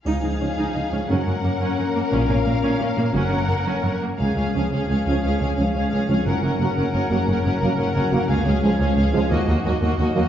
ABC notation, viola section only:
X:1
M:6/8
L:1/8
Q:3/8=117
K:Db
V:1 name="Viola section"
E E D E E D | D D B, D D B, | D D B, D D B, | D D B, D D B, |
D D D D D D | D D D D D D | D D D D D D | D D D D D D |
D D D D D D | B, B, B, B, B, B, |]